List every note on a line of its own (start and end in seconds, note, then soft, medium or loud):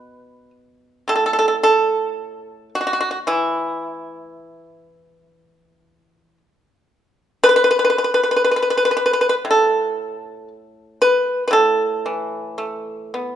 0.00 1.07 B2 soft
0.00 0.50 B4 medium
1.08 4.33 A2 soft
1.08 1.14 A4 medium
1.16 1.24 A4 soft
1.26 1.32 A4 medium
1.33 1.37 A4 soft
1.39 1.47 A4 medium
1.48 1.55 A4 soft
1.63 2.69 A4 medium
2.75 2.80 F#4 medium
2.81 2.86 F#4 soft
2.87 2.92 F#4 medium
2.93 2.99 F#4 soft
3.01 3.09 F#4 medium
3.11 3.18 F#4 soft
3.27 6.41 E3 soft
3.27 6.37 E4 medium
7.44 7.48 B4 medium
7.49 7.55 B4 medium
7.56 7.63 B4 medium
7.64 7.69 B4 medium
7.71 7.77 B4 medium
7.79 7.83 B4 medium
7.85 7.89 B4 medium
7.90 7.97 B4 medium
7.98 8.03 B4 medium
8.04 8.11 B4 soft
8.14 8.20 B4 medium
8.23 8.28 B4 soft
8.31 8.35 B4 medium
8.36 8.42 B4 soft
8.44 8.49 B4 medium
8.51 8.55 B4 soft
8.56 8.61 B4 medium
8.62 8.68 B4 soft
8.70 8.76 B4 medium
8.77 8.83 B4 soft
8.85 8.90 B4 medium
8.91 8.95 B4 soft
8.97 9.03 B4 medium
9.06 9.11 B4 medium
9.13 9.19 B4 medium
9.21 9.26 B4 medium
9.29 9.34 B4 medium
9.45 11.50 A2 soft
9.51 10.48 A4 medium
11.02 11.43 B4 medium
11.48 13.36 A2 soft
11.48 11.52 B4 soft
11.53 13.36 A4 medium
12.06 13.36 E3 soft
12.58 13.14 A3 soft
13.14 13.36 B3 soft